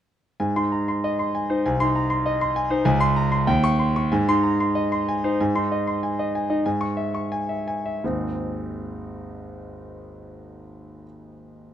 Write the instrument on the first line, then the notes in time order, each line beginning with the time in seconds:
grand piano
0.40 G#2 G#5
0.56 D#4 C6
0.72 A#5
0.88 C6
1.04 D#5
1.19 C6
1.35 G#5
1.50 D#4 C5
1.66 C2 G#5
1.80 D#4 C6
1.96 A#5
2.10 C6
2.26 D#5
2.41 C6
2.56 G#5
2.70 D#4 C5
2.85 C#2 G#5
3.00 C6
3.16 A#5
3.32 C6
3.47 D#2 G5
3.64 C#6
3.79 C6
3.96 C#6
4.12 G#2 G#5
4.28 D#4 C6
4.43 A#5
4.60 C6
4.75 D#5
4.92 C6
5.08 G#5
5.24 D#4 C5
5.41 G#2 G#5
5.55 D#4 C6
5.72 D#5
5.87 C6
6.03 G#5
6.19 D#5
6.35 G#5
6.50 D#4 D#5
6.66 G#2 G#5
6.81 C#6
6.97 E5
7.15 C#6
7.32 G#5
7.49 E5
7.68 G#5
7.86 E5
8.04 G#1 D#2 G#3 C4 D#4 G#4